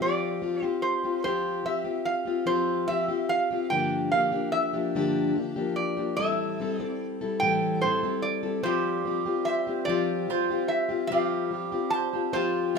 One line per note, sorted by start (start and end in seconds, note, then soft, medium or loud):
0.01 0.41 F3 medium
0.01 0.41 C4 medium
0.01 0.42 F4 medium
0.01 0.42 G4 medium
0.01 0.64 D5 medium
0.42 0.63 F3 medium
0.42 0.63 C4 medium
0.42 0.61 F4 medium
0.42 0.61 G4 medium
0.62 1.04 C4 soft
0.62 1.04 F4 soft
0.62 1.02 G4 soft
0.62 0.82 C5 medium
0.82 1.23 C5 medium
1.04 1.24 C4 soft
1.04 1.24 F4 soft
1.04 1.24 G4 soft
1.24 1.62 F3 medium
1.24 1.64 C4 medium
1.24 1.64 F4 medium
1.24 1.65 G4 medium
1.24 1.67 C5 medium
1.64 1.86 F3 medium
1.64 1.85 C4 medium
1.64 1.84 F4 medium
1.64 1.83 G4 medium
1.64 2.05 E5 medium
1.84 2.26 C4 soft
1.84 2.26 F4 soft
1.84 2.24 G4 soft
2.05 2.49 F5 medium
2.25 2.45 C4 soft
2.25 2.46 F4 soft
2.25 2.46 G4 soft
2.46 2.86 F3 medium
2.46 2.87 C4 medium
2.46 2.88 F4 medium
2.46 2.89 G4 medium
2.46 2.90 C5 medium
2.88 3.09 F3 medium
2.88 3.09 C4 medium
2.88 3.08 F4 medium
2.88 3.07 G4 medium
2.88 3.29 E5 medium
3.08 3.52 C4 soft
3.08 3.51 F4 soft
3.08 3.50 G4 medium
3.29 3.70 F5 medium
3.51 3.72 C4 soft
3.51 3.72 F4 soft
3.51 3.71 G4 soft
3.70 4.13 G2 medium
3.70 4.13 D3 medium
3.70 4.10 F3 medium
3.70 4.11 A#3 medium
3.70 4.12 D4 medium
3.70 4.13 G4 medium
3.70 4.11 G5 medium
4.12 4.33 F3 medium
4.12 4.32 A#3 medium
4.12 4.31 D4 medium
4.12 4.31 G4 medium
4.12 4.52 F5 medium
4.32 4.74 F3 soft
4.32 4.74 A#3 soft
4.32 4.73 D4 soft
4.32 4.72 G4 soft
4.52 5.76 E5 medium
4.73 4.95 F3 soft
4.73 4.95 A#3 soft
4.73 4.95 D4 soft
4.73 4.95 G4 soft
4.95 5.36 G2 medium
4.95 5.37 D3 medium
4.95 5.34 F3 medium
4.95 5.34 A#3 medium
4.95 5.36 D4 medium
4.95 5.37 G4 medium
5.35 5.57 F3 medium
5.35 5.57 A#3 medium
5.35 5.56 D4 medium
5.35 5.55 G4 medium
5.56 5.98 F3 soft
5.56 5.97 A#3 soft
5.56 5.97 D4 soft
5.56 5.96 G4 medium
5.76 6.15 D5 medium
5.97 6.19 F3 soft
5.97 6.19 A#3 soft
5.97 6.19 D4 soft
5.97 6.18 G4 medium
6.17 6.60 A2 medium
6.17 6.60 E3 medium
6.17 6.59 G3 medium
6.17 6.60 C4 medium
6.17 6.60 E4 medium
6.17 6.60 A4 medium
6.17 6.81 E5 medium
6.60 6.80 G3 medium
6.60 6.79 C4 medium
6.60 6.79 E4 medium
6.60 6.77 A4 medium
6.79 7.22 G3 soft
6.79 7.21 C4 soft
6.79 7.21 E4 soft
6.79 7.20 A4 soft
6.79 7.06 D5 medium
7.21 7.42 G3 soft
7.21 7.43 C4 soft
7.21 7.42 E4 soft
7.21 7.42 A4 soft
7.40 7.84 A2 medium
7.40 7.84 E3 medium
7.40 7.82 G3 medium
7.40 7.84 E4 medium
7.40 7.84 A4 medium
7.40 7.84 G5 medium
7.44 7.83 C4 medium
7.81 8.04 G3 medium
7.81 8.03 C4 medium
7.81 8.02 E4 medium
7.81 8.25 C5 medium
7.86 8.02 A4 medium
8.03 8.44 G3 soft
8.03 8.44 C4 soft
8.03 8.42 E4 soft
8.03 8.42 A4 soft
8.22 8.66 D5 medium
8.43 8.62 G3 soft
8.43 8.63 C4 soft
8.43 8.63 E4 soft
8.43 8.64 A4 soft
8.63 9.04 F3 medium
8.63 11.11 G3 medium
8.63 9.04 C4 medium
8.63 9.05 F4 medium
8.63 9.06 G4 medium
8.63 9.49 C5 medium
9.05 9.27 F3 medium
9.05 9.27 C4 medium
9.05 9.26 F4 medium
9.05 9.24 G4 medium
9.26 9.68 C4 soft
9.26 9.67 F4 soft
9.26 9.66 G4 medium
9.45 10.29 C5 soft
9.45 9.89 E5 medium
9.67 9.87 C4 soft
9.67 9.87 F4 soft
9.67 9.88 G4 soft
9.85 10.27 F3 medium
9.85 10.28 C4 medium
9.85 10.29 F4 medium
9.85 10.72 D5 medium
9.89 10.29 F4 medium
9.89 10.30 G4 medium
10.28 10.50 F3 medium
10.28 10.51 C4 medium
10.28 12.35 F4 medium
10.28 10.50 F4 medium
10.28 10.49 G4 medium
10.28 11.93 C5 medium
10.50 10.90 C4 soft
10.50 10.89 F4 soft
10.50 10.88 G4 medium
10.68 11.07 E5 medium
10.89 11.10 C4 soft
10.89 11.11 F4 soft
10.89 11.11 G4 medium
11.07 11.50 F3 medium
11.07 11.50 C4 medium
11.07 11.95 F5 medium
11.12 12.79 G3 medium
11.12 11.51 F4 medium
11.12 11.52 G4 medium
11.51 11.73 F3 soft
11.51 11.73 C4 medium
11.51 11.72 F4 soft
11.51 11.71 G4 medium
11.72 12.14 C4 soft
11.72 12.13 F4 soft
11.72 12.12 G4 medium
11.90 12.75 C5 medium
11.90 12.35 A5 medium
12.13 12.33 C4 soft
12.13 12.32 F4 soft
12.13 12.34 G4 soft
12.33 12.74 F3 medium
12.33 12.74 C4 medium
12.33 12.76 F4 medium
12.33 12.75 F4 medium
12.33 12.76 G4 medium
12.33 12.73 C5 medium
12.75 12.79 F3 medium
12.75 12.79 C4 medium
12.75 12.79 F4 medium